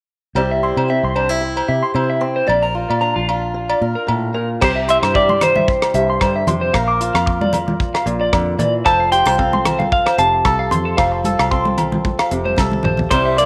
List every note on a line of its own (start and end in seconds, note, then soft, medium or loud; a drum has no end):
0.35 0.71 C2 medium
0.35 0.84 C3 medium
0.35 0.87 G3 medium
0.35 0.88 C4 soft
0.35 0.62 E4 soft
0.35 1.67 G4 medium
0.35 0.50 C5 medium
0.35 low agogo medium
0.51 0.62 E5 medium
0.63 1.15 E4 soft
0.63 0.76 C6 medium
0.77 1.00 C3 medium
0.77 0.89 C5 medium
0.77 low agogo medium
0.88 1.37 G3 soft
0.88 2.20 C4 soft
0.88 1.03 E5 medium
1.03 1.60 C2 medium
1.03 1.15 C6 medium
1.15 1.29 D4 soft
1.15 1.29 C5 medium
1.15 low agogo soft
1.29 1.93 E4 soft
1.29 1.42 E5 medium
1.41 1.90 G2 soft
1.57 1.68 C5 medium
1.57 low agogo medium
1.68 1.81 C3 medium
1.68 2.46 G4 soft
1.68 1.82 E5 medium
1.83 1.94 C6 medium
1.94 2.41 C3 medium
1.94 2.43 G3 soft
1.94 2.45 E4 medium
1.94 2.09 C5 medium
1.94 low agogo medium
2.10 2.21 E5 medium
2.21 2.45 C4 medium
2.21 muted clean electric guitar stroke medium
2.36 2.47 C5 medium
2.47 2.85 A#1 medium
2.47 2.96 A#2 medium
2.47 2.62 D5 medium
2.47 muted steel-string acoustic guitar stroke medium
2.47 low agogo medium
2.62 3.80 A#4 medium
2.62 2.74 A#5 medium
2.75 3.28 F4 soft
2.90 3.13 A#2 medium
2.90 3.01 D5 medium
2.90 low agogo medium
3.01 3.50 F3 soft
3.01 4.58 D4 medium
3.01 3.15 A#5 medium
3.16 3.73 A#1 medium
3.16 3.27 F4 medium
3.29 4.59 F4 soft
3.29 low agogo medium
3.54 4.03 A#2 medium
3.70 3.81 D5 medium
3.70 low agogo medium
3.81 3.94 A#2 medium
3.81 4.58 A#4 medium
3.95 4.07 A#4 medium
4.07 4.34 A2 medium
4.07 4.55 A#2 medium
4.07 low agogo medium
4.34 4.61 A#2 medium
4.34 4.48 A#4 medium
4.61 4.98 C2 medium
4.61 5.94 C3 medium
4.61 5.15 G4 medium
4.61 4.75 C5 medium
4.61 4.71 C5 medium
4.61 kick medium
4.61 cross-stick medium
4.61 crash medium
4.61 low agogo medium
4.75 4.87 E5 medium
4.88 6.71 E4 soft
4.88 4.97 E5 medium
4.88 5.02 C6 medium
4.88 closed hi-hat medium
5.02 5.82 G2 medium
5.02 5.14 C5 medium
5.02 cross-stick medium
5.02 low agogo medium
5.14 6.71 G3 soft
5.14 6.74 G4 medium
5.14 5.42 D5 medium
5.14 5.28 E5 medium
5.14 kick medium
5.29 5.40 C6 medium
5.29 high conga medium
5.41 5.55 C5 medium
5.41 6.44 C5 medium
5.41 cross-stick medium
5.41 closed hi-hat soft
5.41 low conga medium
5.41 low agogo medium
5.56 5.67 E5 medium
5.56 high conga medium
5.56 low conga medium
5.68 kick loud
5.82 muted clean electric guitar stroke medium
5.82 cross-stick medium
5.82 low agogo medium
5.94 6.17 C2 medium
5.94 6.74 G2 medium
5.94 6.08 E5 medium
5.94 closed hi-hat soft
6.10 6.20 C6 medium
6.21 6.44 G2 medium
6.21 6.47 D3 medium
6.21 6.34 C5 medium
6.21 kick medium
6.21 cross-stick medium
6.21 low agogo medium
6.36 6.47 E5 medium
6.47 6.70 F2 medium
6.47 6.74 C3 medium
6.47 6.61 C6 medium
6.47 closed hi-hat soft
6.47 low conga medium
6.61 6.73 C5 medium
6.74 7.10 A#1 medium
6.74 8.05 A#2 medium
6.74 7.26 A#4 medium
6.74 6.87 F5 medium
6.74 kick medium
6.74 cross-stick medium
6.74 low agogo medium
6.88 6.99 D6 medium
7.01 9.15 F4 medium
7.01 closed hi-hat soft
7.14 7.94 F2 medium
7.14 7.26 F5 medium
7.14 cross-stick medium
7.14 low agogo medium
7.26 8.83 A#4 medium
7.26 muted clean electric guitar stroke medium
7.26 kick medium
7.41 7.52 D5 medium
7.41 high conga medium
7.53 closed hi-hat soft
7.53 low conga medium
7.53 low agogo medium
7.68 high conga medium
7.68 low conga medium
7.80 kick medium
7.94 8.05 F5 medium
7.94 cross-stick medium
7.94 low agogo medium
8.06 8.29 A#1 medium
8.06 8.83 A#2 medium
8.06 closed hi-hat soft
8.21 8.32 D5 medium
8.33 8.56 F2 loud
8.33 8.58 D3 medium
8.33 kick medium
8.33 cross-stick medium
8.33 low agogo medium
8.59 8.82 A#2 loud
8.59 8.86 E3 medium
8.59 8.73 D5 medium
8.59 closed hi-hat soft
8.59 low conga medium
8.85 9.22 F1 loud
8.85 10.97 F3 medium
8.85 9.12 A4 medium
8.85 8.99 C5 loud
8.85 9.12 A5 medium
8.85 kick medium
8.85 cross-stick medium
8.85 low agogo medium
9.00 9.11 F5 medium
9.12 9.25 G4 medium
9.12 9.92 G5 loud
9.12 9.26 C6 medium
9.12 closed hi-hat soft
9.25 10.06 C2 medium
9.25 9.37 A4 medium
9.25 9.38 C5 medium
9.25 cross-stick medium
9.25 low agogo medium
9.38 11.51 C4 soft
9.38 10.44 A4 medium
9.38 9.52 F5 medium
9.38 kick medium
9.53 9.65 C6 medium
9.53 high conga medium
9.65 9.79 C5 medium
9.65 cross-stick medium
9.65 closed hi-hat soft
9.65 low conga medium
9.65 low agogo medium
9.79 9.91 F5 medium
9.79 high conga medium
9.79 low conga medium
9.92 10.19 F5 medium
9.92 kick loud
10.06 10.17 C5 medium
10.06 cross-stick medium
10.06 low agogo medium
10.18 10.42 F1 medium
10.18 10.98 C3 medium
10.18 10.32 F5 medium
10.18 10.68 A5 medium
10.18 closed hi-hat soft
10.45 10.68 C2 medium
10.45 10.95 A4 medium
10.45 kick medium
10.45 cross-stick medium
10.45 low agogo medium
10.59 10.71 F5 medium
10.71 10.95 F2 medium
10.71 10.85 C6 medium
10.71 closed hi-hat medium
10.71 low conga medium
10.85 10.97 A4 medium
10.97 11.34 F1 medium
10.97 13.11 F3 medium
10.97 11.24 A4 medium
10.97 11.11 F5 medium
10.97 kick medium
10.97 cross-stick medium
10.97 low agogo medium
11.12 muted clean electric guitar stroke medium
11.24 11.51 A4 medium
11.24 closed hi-hat soft
11.24 high conga medium
11.39 12.20 C2 medium
11.39 11.50 F5 medium
11.39 cross-stick medium
11.39 low agogo medium
11.51 13.08 C4 medium
11.51 12.58 A4 soft
11.51 11.65 C6 medium
11.51 kick medium
11.65 muted clean electric guitar stroke medium
11.65 high conga medium
11.78 closed hi-hat soft
11.78 low conga medium
11.78 low agogo medium
11.92 high conga medium
11.92 low conga medium
12.05 kick medium
12.05 high conga medium
12.19 12.30 F5 medium
12.19 cross-stick medium
12.19 low agogo medium
12.31 12.55 F1 medium
12.31 13.11 C3 medium
12.31 closed hi-hat soft
12.45 12.57 C5 medium
12.45 high conga soft
12.57 12.81 C2 medium
12.57 13.09 A4 medium
12.57 kick medium
12.57 snare soft
12.57 high conga medium
12.57 low agogo medium
12.72 high tom soft
12.72 high conga medium
12.83 13.08 A#1 medium
12.83 12.98 C5 medium
12.83 mid tom medium
12.83 low conga medium
12.97 floor tom medium
12.97 low conga medium
13.11 13.46 C2 loud
13.11 13.46 C3 medium
13.11 13.37 G3 medium
13.11 13.46 E4 medium
13.11 13.38 C5 medium
13.11 13.25 C5 medium
13.11 kick medium
13.11 cross-stick medium
13.11 closed hi-hat soft
13.11 low agogo medium
13.26 13.37 E5 medium
13.37 13.46 A#3 medium
13.37 13.46 D5 medium
13.37 13.46 C6 medium
13.37 closed hi-hat soft